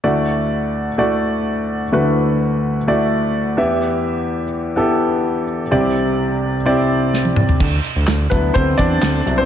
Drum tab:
CC |----------------|----------------|----------------|----------------|
HH |----------------|----------------|----------------|----------------|
CP |----------------|----------------|----------------|----------------|
SD |----------------|----------------|----------------|------------o---|
T1 |----------------|----------------|----------------|-------------o--|
T2 |----------------|----------------|----------------|--------------o-|
FT |----------------|----------------|----------------|---------------o|
BD |----------------|----------------|----------------|----------------|

CC |x---------------|
HH |--x-x-x-x-x-x-x-|
CP |----x-------x---|
SD |----o-------o---|
T1 |----------------|
T2 |----------------|
FT |----------------|
BD |o-----o-o-o-----|